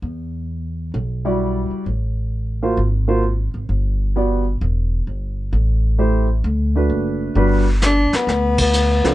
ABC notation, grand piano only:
X:1
M:4/4
L:1/8
Q:"Swing" 1/4=131
K:G
V:1 name="Grand piano"
z4 z [G,EFd]3 | z3 [_B,=F^Fc] z [B,=F_Gc] z2 | z2 [B,FGd] z4 z | z2 [A,EGc] z2 [A,DFB]3 |
[G,DFB] z6 [=F,CDA] |]